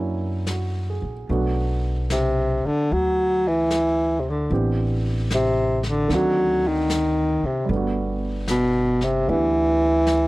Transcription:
Already playing: upright bass F#2, grand piano F#3 A#3 C#4 D4 E4
0.47 grand piano F#4, snare, hi-hat pedal
0.90 grand piano G#4
1.02 upright bass A#1
1.28 upright bass B1, grand piano F#3 A3 B3 D4 F#4, brush sweep
2.10 baritone saxophone C3, snare, hi-hat pedal
2.65 baritone saxophone D3, muted upright bass stroke
2.90 upright bass D2, baritone saxophone F#3, brush sweep
3.48 baritone saxophone E3
3.71 snare, hi-hat pedal
4.20 baritone saxophone C3
4.30 baritone saxophone D3
4.50 upright bass A1, grand piano E3 B3 C4 D4 G4, brush sweep
5.30 baritone saxophone C3, snare, hi-hat pedal
5.83 snare
5.89 baritone saxophone D3
6.08 upright bass D2, grand piano D#3 A3 C4, brush sweep, snare
6.12 baritone saxophone F#3, grand piano D4 F#4
6.67 baritone saxophone D#3
6.90 snare, hi-hat pedal
7.43 baritone saxophone C3, muted upright bass stroke
7.65 upright bass G1, grand piano G3 A3, brush sweep
7.70 grand piano B3 D4
7.76 grand piano F#4
8.48 baritone saxophone B2, snare, hi-hat pedal
9.01 baritone saxophone C3, snare
9.27 upright bass D2, baritone saxophone E3, grand piano B3 D4 E4 G4, brush sweep
10.07 snare, hi-hat pedal

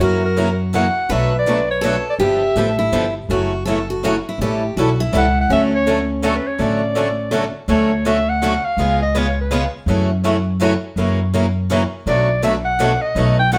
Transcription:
0.00 upright bass F#2, steel-string acoustic guitar C#3 E3 F#3 A#3 C#4 E4 F#4 A#4, clarinet A#4
0.26 clarinet A#4
0.36 steel-string acoustic guitar C#3 E3 F#3 A#3 C#4 E4 F#4 A#4
0.73 steel-string acoustic guitar C#3 E3 F#3 A#3 C#4 E4 F#4 A#4, clarinet F#5
1.09 upright bass B1, steel-string acoustic guitar B2 F#3 A3 D4 F#4 B4, clarinet E5
1.39 clarinet D5
1.46 steel-string acoustic guitar B2 F#3 A3 D4 F#4 B4
1.71 clarinet C#5
1.81 steel-string acoustic guitar B2 F#3 A3 D4 F#4 A4 B4
2.10 clarinet D5
2.19 upright bass G1, steel-string acoustic guitar D3 F3 B3 D4 G4
2.23 clarinet E5
2.56 upright bass A1, steel-string acoustic guitar D3 F3 B3 D4 G4 A4
2.79 steel-string acoustic guitar E4
2.92 upright bass G1, steel-string acoustic guitar D3 F3 B3 D4 G4
3.29 upright bass F#1, steel-string acoustic guitar C#3 E3 F#3 A3 C#4 E4 F#4 C#5
3.65 steel-string acoustic guitar C#3 E3 F#3 A3 C#4 E4 F#4 A4 C#5
3.90 steel-string acoustic guitar F#4
4.03 steel-string acoustic guitar C#3 E3 F#3 A3 C#4 E4 F#4 C#5
4.29 steel-string acoustic guitar E4
4.38 upright bass A1, steel-string acoustic guitar E3 G3 C#4 E4 G4
4.43 steel-string acoustic guitar A4
4.76 upright bass B1, steel-string acoustic guitar E3 G3 C#4 E4 F#4 A4
5.00 steel-string acoustic guitar E4
5.12 upright bass C#2, steel-string acoustic guitar E3 G3 C#4 E4 A4
5.17 clarinet F#5
5.41 clarinet F#5
5.49 upright bass D2, steel-string acoustic guitar D3 F#3 A3 C#4 F#4 A4, clarinet E5
5.75 clarinet C#5
5.87 steel-string acoustic guitar D3 F#3 A3 C#4 F#4 A4
6.23 steel-string acoustic guitar D3 F#3 A3 C#4 F#4 A4, clarinet A4
6.36 clarinet B4
6.47 clarinet C#5
6.59 upright bass A1, steel-string acoustic guitar D3 F#3 A3 C#4 F#4 A4, clarinet D5
6.95 steel-string acoustic guitar D3 F#3 A3 C#4 F#4 A4
7.31 steel-string acoustic guitar D3 F#3 A3 C#4 F#4 A4
7.68 upright bass D2, steel-string acoustic guitar D3 F#3 A3 C#4 F#4 A4, clarinet C#5
8.05 steel-string acoustic guitar D3 F#3 A3 C#4 F#4 A4, clarinet E5
8.29 clarinet F#5
8.42 steel-string acoustic guitar D3 F#3 A3 C#4 F#4 A4
8.65 clarinet F5
8.77 upright bass C#2, steel-string acoustic guitar C#3 G#3 B3 F4 G#4
9.02 clarinet D#5
9.15 steel-string acoustic guitar C#3 G#3 B3 F4 G#4, clarinet C#5
9.41 clarinet B4
9.52 steel-string acoustic guitar C#3 G#3 B3 F4 G#4
9.86 upright bass F#2, steel-string acoustic guitar C#3 E3 F#3 A3 C#4 E4 F#4 C#5
10.24 steel-string acoustic guitar C#3 E3 F#3 A3 C#4 E4 F#4 C#5
10.60 steel-string acoustic guitar C#3 E3 F#3 A3 C#4 E4 F#4 C#5
10.96 upright bass F#2, steel-string acoustic guitar C#3 E3 F#3 A#3 C#4 E4 F#4 A#4
11.34 steel-string acoustic guitar C#3 E3 F#3 A#3 C#4 E4 F#4 A#4
11.70 steel-string acoustic guitar C#3 E3 F#3 A#3 C#4 E4 F#4 A#4
12.06 upright bass B1, steel-string acoustic guitar B2 F#3 A3 D4 F#4 B4, clarinet D5
12.43 steel-string acoustic guitar B2 F#3 A3 D4 F#4 B4, clarinet E5
12.65 clarinet F#5
12.79 steel-string acoustic guitar B2 F#3 A3 D4 F#4 B4
13.02 clarinet D#5
13.15 upright bass B1, steel-string acoustic guitar B2 F#3 A3 D#4 F#4 B4
13.39 clarinet G5
13.52 steel-string acoustic guitar B2 F#3 A3 D#4 F#4 B4, clarinet F#5

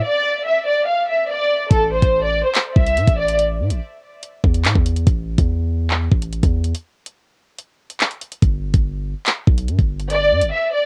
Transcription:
0.03 violin section D5
0.45 violin section E5
0.66 violin section D5
0.87 violin section F5
1.08 violin section E5
1.29 violin section D5
1.71 808-style bass A1, violin section A4, kick, closed hi-hat
1.92 violin section C5
2.02 808-style bass A1, kick, closed hi-hat
2.23 violin section D5
2.44 violin section C5
2.55 clap, closed hi-hat
2.76 808-style bass C2, violin section E5, kick
2.86 closed hi-hat
2.97 808-style bass A2, closed hi-hat
3.07 808-style bass A1, kick, closed hi-hat
3.18 violin section D5
3.28 closed hi-hat
3.39 closed hi-hat
3.60 808-style bass A2
3.70 808-style bass A1, closed hi-hat
4.23 closed hi-hat
4.44 808-style bass E2, kick
4.54 closed hi-hat
4.65 808-style bass A2, clap, closed hi-hat
4.75 808-style bass E2, kick
4.86 closed hi-hat
4.96 closed hi-hat
5.07 808-style bass A1, kick, closed hi-hat
5.38 808-style bass E2, kick, closed hi-hat
5.91 clap, closed hi-hat
6.12 808-style bass A1, kick
6.22 closed hi-hat
6.33 closed hi-hat
6.43 808-style bass E2, kick, closed hi-hat
6.64 closed hi-hat
6.74 closed hi-hat
7.06 closed hi-hat
7.58 closed hi-hat
7.90 closed hi-hat
8.00 clap, closed hi-hat
8.11 closed hi-hat
8.21 closed hi-hat
8.32 closed hi-hat
8.42 808-style bass G1, kick, closed hi-hat
8.74 808-style bass G1, kick, closed hi-hat
9.26 clap, closed hi-hat
9.47 808-style bass B1, kick
9.58 closed hi-hat
9.68 808-style bass G2, closed hi-hat
9.79 808-style bass G1, kick, closed hi-hat
10.00 closed hi-hat
10.10 violin section D5, closed hi-hat
10.31 808-style bass G2
10.42 808-style bass G1, closed hi-hat
10.52 violin section E5
10.73 violin section D5

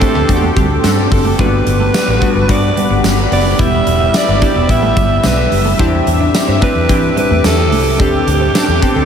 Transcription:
Already playing: synth keys D4 G4, alto saxophone A4, analog synth pad A4 G5 C6 D6
0.00 synth keys A3 C4 D4 G4, clean electric guitar C4, kick, closed hi-hat
0.15 fingered electric bass D2, clean electric guitar B3, analog polysynth C4 D4 G4
0.29 fingered electric bass E2, synth keys A3 C4 D4 F#4, muted clean electric guitar stroke, kick, closed hi-hat
0.37 synth keys G4
0.43 clean electric guitar A3
0.56 fingered electric bass D2, clean electric guitar G3, analog polysynth C4 D4 G4, kick, closed hi-hat
0.83 fingered electric bass G2, clean electric guitar G3, analog polysynth C4 D4 A4, snare, closed hi-hat, tambourine
1.11 fingered electric bass F#1, alto saxophone A4, muted clean electric guitar stroke, kick, open hi-hat
1.25 clean electric guitar A3
1.39 fingered electric bass G1, analog synth pad G3 F#5 B5, synth keys G3 A#3 D4 F#4, clean electric guitar G3, alto saxophone B4, kick, closed hi-hat
1.46 synth keys B3
1.67 fingered electric bass G1, muted clean electric guitar stroke, closed hi-hat
1.80 clean electric guitar A3
1.94 muted clean electric guitar stroke, snare, closed hi-hat, tambourine
2.08 fingered electric bass A1, clean electric guitar B3
2.21 synth keys G3 B3 D4 F#4, clean electric guitar A3, kick, closed hi-hat
2.35 fingered electric bass G1
2.49 fingered electric bass G2, synth keys G3 B3 D4 F#4, alto saxophone D5, muted clean electric guitar stroke, kick, closed hi-hat
2.77 clean electric guitar G3, closed hi-hat
2.90 fingered electric bass G1, clean electric guitar B3
3.04 fingered electric bass G1, snare, closed hi-hat, tambourine
3.31 fingered electric bass F#1, clean electric guitar B3, alto saxophone D5, open hi-hat
3.59 fingered electric bass E1, synth keys G3 B3 E4 G4, clean electric guitar E4, analog synth pad E5 E6, alto saxophone E5, kick, closed hi-hat
3.87 fingered electric bass E1, muted clean electric guitar stroke, closed hi-hat
4.00 clean electric guitar E4
4.14 alto saxophone D5, muted clean electric guitar stroke, snare, closed hi-hat, tambourine
4.28 fingered electric bass G1
4.41 synth keys G3 B3 E4 G4, clean electric guitar D4, kick, closed hi-hat
4.55 fingered electric bass E1, clean electric guitar B3
4.69 fingered electric bass A1, synth keys G3 B3 E4 G4, alto saxophone E5, muted clean electric guitar stroke, kick, closed hi-hat
4.83 clean electric guitar A3
4.96 fingered electric bass G1, clean electric guitar G3, kick, closed hi-hat
5.24 fingered electric bass B1, clean electric guitar G3, alto saxophone B4, snare, closed hi-hat, tambourine
5.52 fingered electric bass F#1, muted clean electric guitar stroke, open hi-hat
5.65 clean electric guitar A3
5.79 fingered electric bass E2, clean electric guitar C4, synth keys C4 D4 E4 G4, analog synth pad D6, kick, closed hi-hat
6.07 fingered electric bass E2, muted clean electric guitar stroke, closed hi-hat
6.21 clean electric guitar D4
6.34 muted clean electric guitar stroke, snare, closed hi-hat, tambourine
6.48 fingered electric bass G2, clean electric guitar C4
6.61 clean electric guitar A3, synth keys C4 D4 E4 G4, alto saxophone B4, kick, closed hi-hat
6.76 fingered electric bass E2
6.89 fingered electric bass E3, synth keys C4 D4 E4 G4, muted clean electric guitar stroke, kick, closed hi-hat
7.17 clean electric guitar G3, alto saxophone B4, closed hi-hat
7.31 fingered electric bass E2, clean electric guitar A3
7.44 fingered electric bass E2, alto saxophone A4, snare, closed hi-hat, tambourine
7.72 fingered electric bass C2, clean electric guitar A3, open hi-hat
7.99 fingered electric bass D2, synth keys C4 D4 G4 A4, clean electric guitar D4, alto saxophone G4, analog synth pad A4 G5 D6, kick, closed hi-hat
8.27 fingered electric bass D2, muted clean electric guitar stroke, closed hi-hat
8.41 clean electric guitar C4
8.54 analog polysynth C4 D4 A4, muted clean electric guitar stroke, snare, closed hi-hat, tambourine
8.68 fingered electric bass E2
8.82 clean electric guitar B3, synth keys C4 D4 G4 A4, kick, closed hi-hat
8.96 fingered electric bass D2, clean electric guitar A3, analog polysynth C4 D4 A4

